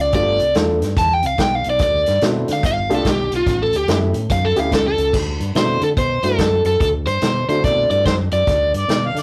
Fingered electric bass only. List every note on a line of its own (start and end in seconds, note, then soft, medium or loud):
0.00 0.12 C#2 medium
0.13 0.37 G1 medium
0.40 0.53 C2 medium
0.55 0.79 E2 medium
0.81 0.95 G2 medium
0.96 1.21 E2 medium
1.23 1.37 C2 medium
1.38 1.62 B1 medium
1.66 1.79 B1 medium
1.80 2.04 D2 medium
2.08 2.21 G2 medium
2.22 2.46 B2 loud
2.49 2.62 D3 medium
2.63 2.87 G1 medium
2.90 3.04 C2 medium
3.05 3.29 B1 medium
3.32 3.46 B1 medium
3.46 3.71 A1 medium
3.73 3.87 D2 medium
3.88 4.12 F#2 loud
4.14 4.29 A2 medium
4.29 4.54 F#2 medium
4.57 4.71 D2 medium
4.72 4.96 C#2 medium
4.98 5.12 C#2 medium
5.14 5.38 D2 medium
5.40 5.54 G2 medium
5.55 5.79 B2 medium
5.81 5.96 D3 medium
5.97 6.21 B2 medium
6.23 6.37 G2 medium
6.38 6.63 F#2 medium
6.65 6.79 F#2 medium
6.80 7.05 D2 medium
7.06 7.21 G2 medium
7.22 7.46 B2 medium
7.49 7.63 D3 medium
7.64 7.88 B2 medium
7.90 8.04 G2 medium
8.06 8.30 F#2 medium
8.32 8.46 F#2 medium
8.47 8.72 D2 medium
8.73 8.88 G2 medium
8.88 9.13 B2 medium
9.15 9.23 D3 medium